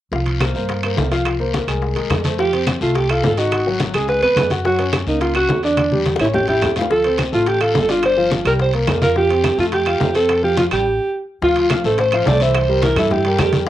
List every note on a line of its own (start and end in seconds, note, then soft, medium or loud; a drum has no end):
0.12 0.52 C2 medium
0.12 0.36 F3 medium
0.12 0.36 F4 medium
0.12 0.36 F5 medium
0.12 high bongo medium
0.12 high conga soft
0.12 long guiro medium
0.26 high conga soft
0.26 high timbale medium
0.40 0.52 A#3 medium
0.40 0.52 A#4 medium
0.40 0.52 C5 medium
0.40 high bongo medium
0.40 high conga medium
0.40 high timbale medium
0.40 low timbale medium
0.40 short guiro medium
0.40 claves medium
0.54 0.94 G2 medium
0.54 0.78 A#3 medium
0.54 0.78 A#4 medium
0.54 0.79 C5 medium
0.54 high bongo soft
0.54 high conga soft
0.54 short guiro medium
0.69 high bongo medium
0.69 high conga soft
0.69 high timbale medium
0.69 long guiro medium
0.83 1.06 A#3 medium
0.83 1.07 A#4 medium
0.83 1.07 C5 medium
0.83 high bongo soft
0.83 high conga soft
0.83 high timbale medium
0.83 claves medium
0.97 1.62 C2 medium
0.97 high bongo medium
0.97 low bongo medium
0.97 high conga medium
0.97 low timbale medium
0.97 short guiro medium
1.11 1.35 F3 medium
1.11 1.35 F4 medium
1.11 1.35 F5 medium
1.11 high bongo soft
1.11 high timbale medium
1.11 short guiro medium
1.25 high bongo medium
1.25 high conga soft
1.25 high timbale medium
1.25 long guiro medium
1.25 claves medium
1.40 1.63 A#3 medium
1.40 1.63 A#4 medium
1.40 1.63 C5 medium
1.40 high conga soft
1.54 high bongo medium
1.54 high conga medium
1.54 high timbale medium
1.54 low timbale medium
1.54 short guiro medium
1.67 1.94 C2 medium
1.67 1.91 G#3 medium
1.67 1.92 G#4 medium
1.67 1.92 A#4 medium
1.67 high bongo soft
1.67 high conga soft
1.67 high timbale medium
1.67 short guiro medium
1.67 claves medium
1.82 high bongo medium
1.82 high conga soft
1.82 long guiro medium
1.95 2.09 D#2 medium
1.95 2.19 G#3 medium
1.95 2.19 G#4 medium
1.95 2.19 A#4 medium
1.95 high bongo soft
1.95 high conga soft
1.95 high timbale medium
2.10 2.75 F2 medium
2.10 high bongo medium
2.10 low bongo medium
2.10 high conga medium
2.10 high timbale medium
2.10 low timbale medium
2.10 short guiro medium
2.10 claves medium
2.24 2.36 A3 medium
2.24 2.36 A4 medium
2.24 2.36 C5 medium
2.24 high bongo soft
2.24 high conga medium
2.24 high timbale medium
2.24 short guiro medium
2.38 2.50 F3 medium
2.38 2.51 F4 medium
2.38 2.65 G4 medium
2.38 high bongo medium
2.38 high conga soft
2.38 long guiro medium
2.52 2.76 C4 medium
2.52 2.76 C5 medium
2.52 high conga soft
2.52 high timbale medium
2.66 high bongo medium
2.66 high conga medium
2.66 high timbale medium
2.66 low timbale medium
2.66 short guiro medium
2.66 claves medium
2.81 3.20 C2 medium
2.81 3.05 A3 medium
2.81 2.97 F4 medium
2.81 3.05 A4 medium
2.81 high bongo soft
2.81 high conga soft
2.81 short guiro medium
2.94 3.11 G4 medium
2.94 high bongo medium
2.94 high conga soft
2.94 high timbale medium
2.94 long guiro medium
3.09 3.33 F4 medium
3.09 3.40 A4 medium
3.09 3.33 F5 medium
3.09 high bongo soft
3.09 high conga soft
3.09 high timbale medium
3.09 claves medium
3.23 3.88 G#1 medium
3.23 high bongo medium
3.23 low bongo medium
3.23 high conga medium
3.23 low timbale medium
3.23 short guiro medium
3.37 3.61 D#4 medium
3.37 3.80 F#4 medium
3.37 3.61 D#5 medium
3.37 high bongo soft
3.37 high timbale medium
3.37 short guiro medium
3.51 high bongo medium
3.51 high conga soft
3.51 high timbale medium
3.51 long guiro medium
3.51 claves medium
3.66 3.89 F#3 medium
3.66 3.90 F#4 medium
3.66 high conga soft
3.79 high bongo medium
3.79 high conga medium
3.79 high timbale medium
3.79 low timbale medium
3.79 short guiro medium
3.94 4.20 C#2 medium
3.94 4.18 G#3 medium
3.94 4.08 G#4 medium
3.94 4.18 G#4 medium
3.94 high bongo soft
3.94 high conga soft
3.94 high timbale medium
3.94 short guiro medium
3.94 claves medium
4.08 4.22 B4 medium
4.08 high bongo medium
4.08 high conga soft
4.08 long guiro medium
4.22 4.35 D#2 medium
4.22 4.46 B3 medium
4.22 4.49 B4 medium
4.22 4.46 B4 medium
4.22 high bongo soft
4.22 high conga soft
4.22 high timbale medium
4.36 5.01 F#2 medium
4.36 high bongo medium
4.36 low bongo medium
4.36 high conga medium
4.36 high timbale medium
4.36 low timbale medium
4.36 short guiro medium
4.36 claves medium
4.50 4.62 F#4 medium
4.50 4.63 F#5 medium
4.50 high bongo soft
4.50 high conga medium
4.50 high timbale medium
4.50 short guiro medium
4.65 4.77 F#3 medium
4.65 4.77 F#4 medium
4.65 4.92 F#4 medium
4.65 high bongo medium
4.65 high conga soft
4.65 long guiro medium
4.79 5.02 C#4 medium
4.79 5.02 C#5 medium
4.79 high conga soft
4.79 high timbale medium
4.93 high bongo medium
4.93 high conga medium
4.93 high timbale medium
4.93 low timbale medium
4.93 short guiro medium
4.93 claves medium
5.06 5.46 C#2 medium
5.06 5.31 A#3 medium
5.06 5.21 D#4 medium
5.06 5.31 A#4 medium
5.06 high bongo soft
5.06 high conga soft
5.06 short guiro medium
5.21 5.34 F4 medium
5.21 high bongo medium
5.21 high conga soft
5.21 high timbale medium
5.21 long guiro medium
5.35 5.59 F#4 medium
5.35 5.62 F#4 medium
5.35 5.59 F#5 medium
5.35 high bongo soft
5.35 high conga soft
5.35 high timbale medium
5.35 claves medium
5.49 6.14 E2 medium
5.49 high bongo medium
5.49 low bongo medium
5.49 high conga medium
5.49 low timbale medium
5.49 short guiro medium
5.63 6.03 D4 medium
5.63 5.87 D4 medium
5.63 5.87 D5 medium
5.63 high bongo soft
5.63 high timbale medium
5.63 short guiro medium
5.77 high bongo medium
5.77 high conga medium
5.77 high timbale medium
5.77 long guiro medium
5.77 claves medium
5.92 6.15 G3 medium
5.92 6.15 G4 medium
5.92 high conga medium
6.05 high bongo medium
6.05 high conga medium
6.05 high timbale medium
6.05 low timbale medium
6.05 short guiro medium
6.16 6.59 A1 medium
6.16 high bongo medium
6.16 high timbale medium
6.16 short guiro medium
6.20 6.43 C#4 medium
6.20 6.27 E4 medium
6.20 6.44 C#5 medium
6.20 claves medium
6.25 high bongo medium
6.33 6.48 G4 medium
6.33 high bongo medium
6.33 low conga medium
6.33 long guiro medium
6.48 6.71 E4 medium
6.48 6.75 G4 medium
6.48 6.72 E5 medium
6.48 low conga medium
6.48 high timbale medium
6.62 7.27 D2 medium
6.62 low conga medium
6.62 high timbale medium
6.62 low timbale medium
6.62 short guiro medium
6.62 claves medium
6.76 6.88 F4 medium
6.76 6.88 F5 medium
6.76 low conga medium
6.76 high timbale medium
6.76 short guiro medium
6.81 low bongo medium
6.90 7.02 F3 medium
6.90 7.02 F4 medium
6.90 7.17 A4 loud
6.90 high bongo medium
6.90 high conga soft
6.90 long guiro medium
7.04 7.28 C4 medium
7.04 7.28 C5 medium
7.04 high conga soft
7.04 high timbale medium
7.18 high bongo medium
7.18 high conga medium
7.18 high timbale medium
7.18 low timbale medium
7.18 short guiro medium
7.18 claves medium
7.32 7.72 A1 medium
7.32 7.56 A3 medium
7.32 7.50 F4 medium
7.32 7.56 A4 medium
7.32 high bongo soft
7.32 high conga soft
7.32 short guiro medium
7.46 7.63 G4 medium
7.46 high bongo medium
7.46 high conga soft
7.46 high timbale medium
7.46 long guiro medium
7.61 7.84 F4 medium
7.61 7.92 A4 loud
7.61 7.84 F5 medium
7.61 high bongo soft
7.61 high conga soft
7.61 high timbale medium
7.61 claves medium
7.74 8.40 G1 medium
7.74 high bongo medium
7.74 low bongo medium
7.74 high conga medium
7.74 low timbale medium
7.74 short guiro medium
7.89 8.12 D4 medium
7.89 8.04 F4 medium
7.89 8.12 D5 medium
7.89 high bongo soft
7.89 high timbale medium
7.89 short guiro medium
8.03 8.31 C5 loud
8.03 high bongo medium
8.03 high conga soft
8.03 high timbale medium
8.03 long guiro medium
8.03 claves medium
8.17 8.41 F3 medium
8.17 8.41 F4 medium
8.17 high conga soft
8.31 high bongo medium
8.31 high conga medium
8.31 high timbale medium
8.31 low timbale medium
8.31 short guiro medium
8.45 8.85 C2 medium
8.45 8.69 G3 medium
8.45 8.69 G4 medium
8.45 8.53 A#4 medium
8.45 high bongo soft
8.45 high conga soft
8.45 high timbale medium
8.45 short guiro medium
8.45 claves medium
8.59 8.74 C5 medium
8.59 high bongo medium
8.59 high conga soft
8.59 long guiro medium
8.74 8.97 A#3 medium
8.74 8.98 A#4 medium
8.74 high bongo soft
8.74 high conga soft
8.74 high timbale medium
8.87 9.53 F2 medium
8.87 high bongo medium
8.87 low bongo medium
8.87 high conga medium
8.87 high timbale medium
8.87 low timbale medium
8.87 short guiro medium
8.87 claves medium
9.02 9.14 F4 medium
9.02 9.16 A#4 medium
9.02 9.14 F5 medium
9.02 high bongo soft
9.02 high conga medium
9.02 high timbale medium
9.02 short guiro medium
9.16 9.28 F3 medium
9.16 9.28 F4 medium
9.16 9.56 G4 medium
9.16 high bongo medium
9.16 high conga soft
9.16 long guiro medium
9.31 9.54 C4 medium
9.31 9.54 C5 medium
9.31 high conga soft
9.31 high timbale medium
9.44 high bongo medium
9.44 high conga medium
9.44 high timbale medium
9.44 low timbale medium
9.44 short guiro medium
9.44 claves medium
9.58 9.98 F2 medium
9.58 9.81 A3 medium
9.58 9.66 F4 medium
9.58 9.82 A4 medium
9.58 high bongo soft
9.58 high conga soft
9.58 short guiro medium
9.72 10.13 G4 medium
9.72 high bongo medium
9.72 high conga soft
9.72 high timbale medium
9.72 long guiro medium
9.86 10.10 F4 medium
9.86 10.10 F5 medium
9.86 high bongo soft
9.86 high conga soft
9.86 high timbale medium
9.86 claves medium
10.01 10.66 F2 medium
10.01 high bongo medium
10.01 low bongo medium
10.01 high conga medium
10.01 low timbale medium
10.01 short guiro medium
10.15 10.38 C4 medium
10.15 10.42 A4 medium
10.15 10.38 C5 medium
10.15 high bongo soft
10.15 high timbale medium
10.15 short guiro medium
10.29 high bongo medium
10.29 high conga soft
10.29 high timbale medium
10.29 long guiro medium
10.29 claves medium
10.43 10.66 F3 medium
10.43 10.66 F4 medium
10.43 10.57 G4 medium
10.43 high conga soft
10.57 10.65 F4 medium
10.57 high bongo medium
10.57 high conga medium
10.57 high timbale medium
10.57 low timbale medium
10.57 short guiro medium
10.71 10.98 A1 medium
10.71 10.83 G3 medium
10.71 10.83 G4 medium
10.71 11.25 G4 medium
10.71 high bongo soft
10.71 high conga soft
10.71 high timbale medium
10.71 short guiro medium
10.71 claves medium
11.42 11.81 D2 medium
11.42 11.65 F3 medium
11.42 11.66 F4 medium
11.42 11.69 F4 medium
11.42 11.66 F5 medium
11.42 high bongo medium
11.42 high conga soft
11.42 long guiro medium
11.56 high conga soft
11.56 high timbale medium
11.70 11.82 F3 medium
11.70 11.82 F4 medium
11.70 11.83 F5 medium
11.70 high bongo medium
11.70 high conga medium
11.70 high timbale medium
11.70 low timbale medium
11.70 short guiro medium
11.70 claves medium
11.84 12.23 A1 medium
11.84 12.08 A3 medium
11.84 12.08 A4 medium
11.84 11.98 A4 medium
11.84 12.08 C5 medium
11.84 high bongo soft
11.84 high conga soft
11.84 short guiro medium
11.98 12.29 C5 medium
11.98 high bongo medium
11.98 high conga soft
11.98 high timbale medium
11.98 long guiro medium
12.12 12.24 F3 medium
12.12 12.25 F4 medium
12.12 12.25 F5 medium
12.12 high bongo soft
12.12 high conga soft
12.12 high timbale medium
12.12 claves medium
12.26 12.91 C2 medium
12.26 12.38 A3 medium
12.26 12.39 A4 medium
12.26 12.39 C5 medium
12.26 12.44 D5 medium
12.26 high bongo medium
12.26 low bongo medium
12.26 high conga medium
12.26 low timbale medium
12.26 short guiro medium
12.40 12.64 E3 medium
12.40 12.64 E4 medium
12.40 12.86 C5 medium
12.40 12.64 E5 medium
12.40 high bongo soft
12.40 high timbale medium
12.40 short guiro medium
12.54 high bongo medium
12.54 high conga soft
12.54 high timbale medium
12.54 long guiro medium
12.54 claves medium
12.68 12.80 G3 medium
12.68 12.80 G4 medium
12.68 12.81 A#4 medium
12.68 high conga soft
12.82 12.95 E3 medium
12.82 12.95 E4 medium
12.82 12.99 A#4 medium
12.82 12.95 E5 medium
12.82 high bongo medium
12.82 high conga medium
12.82 high timbale medium
12.82 low timbale medium
12.82 short guiro medium
12.96 13.35 G2 medium
12.96 13.20 E3 medium
12.96 13.20 E4 medium
12.96 13.14 A4 medium
12.96 13.21 E5 medium
12.96 high bongo soft
12.96 high conga soft
12.96 low conga medium
12.96 high timbale medium
12.96 short guiro medium
12.96 claves medium
13.10 13.40 G4 medium
13.10 high bongo medium
13.10 high conga soft
13.10 low conga medium
13.10 long guiro medium
13.24 13.37 G3 medium
13.24 13.37 G4 medium
13.24 13.37 A#4 medium
13.24 high bongo soft
13.24 high conga soft
13.24 high timbale medium
13.38 13.69 F2 medium
13.38 13.62 G3 medium
13.38 13.62 G4 medium
13.38 13.59 G4 medium
13.38 13.62 A#4 medium
13.38 high bongo medium
13.38 low bongo medium
13.38 high conga medium
13.38 high timbale medium
13.38 low timbale medium
13.38 short guiro medium
13.38 claves medium
13.52 high bongo soft
13.52 high conga medium
13.52 high timbale medium
13.52 short guiro medium